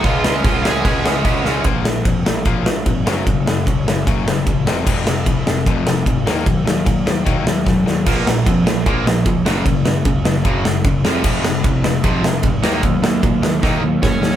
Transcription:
<<
  \new Staff \with { instrumentName = "Lead electric guitar" } { \time 4/4 \key bes \minor \tempo 4 = 150 <f' f''>4. <aes' aes''>4 r4. | r1 | r1 | r1 |
r1 | r1 | r1 | r1 |
r2. <des' des''>4 | }
  \new Staff \with { instrumentName = "Distorted electric guitar" } { \clef bass \time 4/4 \key bes \minor <des aes des'>8 <des aes des'>8 <des aes des'>8 <des aes des'>8 <des aes des'>8 <des aes des'>8 <des aes des'>8 <des aes des'>8 | r1 | r1 | r1 |
r1 | <bes, f bes>8 <bes, f>8 <bes, f>8 <bes, f>8 <bes, f bes>8 <bes, f>8 <bes, f>8 <ges, des ges>8 | <ges, des>8 <ges, des>8 <ges, des>8 <ges, des>8 <ges, des ges>8 <ges, des>8 <ges, des>8 <f, c f>8 | <f, c f>8 <f, c>8 <f, c>8 <f, c>8 <f, c f>8 <f, c>8 <f, c>8 <ees bes ees'>8 |
<ees bes>8 <ees bes>8 <ees bes>8 <ees bes>8 <ees bes ees'>8 <ees bes>8 <ees bes>8 <ees bes>8 | }
  \new Staff \with { instrumentName = "Overdriven electric guitar" } { \clef bass \time 4/4 \key bes \minor <des f aes des'>8 <des f aes des'>8 <des f aes des'>8 <des f aes des'>8 <des f aes des'>8 <des f aes des'>8 <des f aes des'>8 <des f aes des'>8 | <bes, f bes>8 <bes, f>8 <bes, f>8 <bes, f>8 <bes, f bes>8 <bes, f>8 <bes, f>8 <ges, des ges>8 | <ges, des>8 <ges, des>8 <ges, des>8 <ges, des>8 <ges, des ges>8 <ges, des>8 <ges, des>8 <f, c f>8 | <f, c f>8 <f, c>8 <f, c>8 <f, c>8 <f, c f>8 <f, c>8 <f, c>8 <ees ges bes>8 |
<ees ges>8 <ees ges>8 <ees ges>8 <ees ges>8 <ees ges bes>8 <ees ges>8 <ees ges>8 <ees ges>8 | <bes, f bes>8 <bes, f>8 <bes, f>8 <bes, f>8 <bes, f bes>8 <bes, f>8 <bes, f>8 <ges, des ges>8 | <ges, des>8 <ges, des>8 <ges, des>8 <ges, des>8 <ges, des ges>8 <ges, des>8 <ges, des>8 <f, c f>8 | <f, c f>8 <f, c>8 <f, c>8 <f, c>8 <f, c f>8 <f, c>8 <f, c>8 <ees ges bes>8 |
<ees ges>8 <ees ges>8 <ees ges>8 <ees ges>8 <ees ges bes>8 <ees ges>8 <ees ges>8 <ees ges>8 | }
  \new Staff \with { instrumentName = "Picked electric bass" } { \clef bass \time 4/4 \key bes \minor des,8 des,8 des,8 des,8 des,8 des,8 des,8 des,8 | bes,,8 bes,,8 f,8 bes,,8 bes,,8 bes,,8 aes,,8 ges,,8 | ges,,8 ges,,8 des,8 ges,,8 ges,,8 ges,,8 bes,,8 f,,8 | f,,8 f,,8 c,8 f,,8 f,,8 f,,8 aes,,8 ees,8 |
ees,8 ees,8 bes,8 ees,8 ees,8 ees,8 ges,8 ees,8 | bes,,8 bes,,8 f,8 bes,,8 bes,,8 bes,,8 des,8 ges,,8 | ges,,8 ges,,8 des,8 ges,,8 ges,,8 ges,,8 ges,,8 f,,8 | f,,8 f,,8 c,8 f,,8 f,,8 f,,8 aes,,8 ees,8 |
ees,8 ees,8 bes,8 ees,8 ees,8 ees,8 ges,8 ees,8 | }
  \new DrumStaff \with { instrumentName = "Drums" } \drummode { \time 4/4 <cymc bd>8 sn8 <cymc bd>8 sn8 <cymc bd>8 sn8 <cymc bd>8 sn8 | <bd cymr>8 sn8 <bd cymr>8 sn8 <bd cymr>8 sn8 <bd cymr>8 sn8 | <bd cymr>8 sn8 <bd cymr>8 sn8 <bd cymr>8 sn8 <bd cymr>8 sn8 | <cymc bd>8 sn8 <bd cymr>8 sn8 <bd cymr>8 sn8 <bd cymr>8 sn8 |
<bd cymr>8 sn8 <bd cymr>8 sn8 <bd cymr>8 sn8 <bd sn>8 sn8 | <cymc bd>8 sn8 <bd cymr>8 sn8 <bd cymr>8 sn8 <bd cymr>8 sn8 | <bd cymr>8 sn8 <bd cymr>8 sn8 <bd cymr>8 sn8 <bd cymr>8 sn8 | <cymc bd>8 sn8 <bd cymr>8 sn8 <bd cymr>8 sn8 <bd cymr>8 sn8 |
<bd cymr>8 sn8 <bd cymr>8 sn8 <bd sn>4 <bd sn>8 sn8 | }
>>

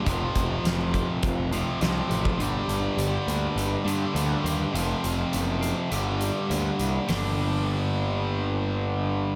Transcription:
<<
  \new Staff \with { instrumentName = "Clean electric guitar" } { \clef bass \time 4/4 \key g \minor \tempo 4 = 102 f,4 f8 a8 f8 c8 f8 a8 | g,4 g8 bes8 g8 d8 g8 bes8 | f,4 a8 c'8 g,8 g8 bes8 d'8 | <g, d g bes d' a'>1 | }
  \new Staff \with { instrumentName = "Overdriven electric guitar" } { \clef bass \time 4/4 \key g \minor <f, c f>2~ <f, c f>8 <f, c f>8 <f, c f>4 | <g, d g>2~ <g, d g>8 <g, d g>8 <g, d g>4 | <f, c f>2 <g, d g>2 | <g, d g>1 | }
  \new Staff \with { instrumentName = "Picked electric bass" } { \clef bass \time 4/4 \key g \minor f,,8 f,,8 f,,4 f,,4 c,8 a,,8 | g,,8 g,,8 g,,8 d,8 g,,8 g,8 d,8 ees,8 | f,,8 f,,8 fis,,4 g,,4 d,8 c,8 | g,,1 | }
  \new DrumStaff \with { instrumentName = "Drums" } \drummode { \time 4/4 <hh bd>8 <hh bd>8 <hh sn>8 <hh bd>8 <hh bd>8 hh8 <hh sn>8 hh16 bd16 | hh8 hh8 hh8 hh8 hh8 hh8 hh8 hh8 | hh8 hh8 hh8 hh8 hh8 hh8 hh8 hh8 | <hho sn>4 r4 r4 r4 | }
>>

